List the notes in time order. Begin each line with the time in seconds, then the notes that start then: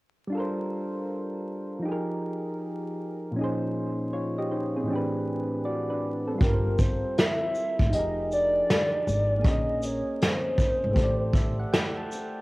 0.28 G3 D4
0.32 F4 A4
0.38 A#4 C5
1.79 F3 D#4
1.85 G4 G#4
1.92 A#4
3.31 A#2 F3
3.36 C#4 D#4
3.41 G#4 C5
4.13 F4 C#5
4.38 G4 D#5
4.51 D#4 C5
4.76 C4 G#4
4.83 A2 E3
4.88 C4 D4
4.93 G4 B4
5.65 F#4 D5
5.90 D4 B4
6.27 C4 A4
6.35 G3 F4
6.41 G1 G4 A#4, kick, closed hi-hat
6.48 B4
6.54 C5
6.79 C5, kick, closed hi-hat, shaker
7.18 E5, snare, closed hi-hat
7.55 shaker
7.79 A1, kick
7.87 F3 D#4
7.93 F1 G4 G#4 D#5, closed hi-hat
7.99 A#4
8.32 D5, shaker
8.70 snare, closed hi-hat
9.07 G#1, closed hi-hat, shaker
9.39 A#3 G#4
9.45 A#1 C#4 A#4 D#5, kick, closed hi-hat
9.51 D#5
9.83 C#5, closed hi-hat, shaker
10.21 C5, snare, closed hi-hat
10.58 kick, shaker
10.84 G#1
10.91 A3 G4
10.96 A1 A4, kick, closed hi-hat
11.00 C5 D5
11.33 E5, kick, shaker
11.60 F#5
11.73 G5, snare, closed hi-hat
11.97 A5
12.12 closed hi-hat, shaker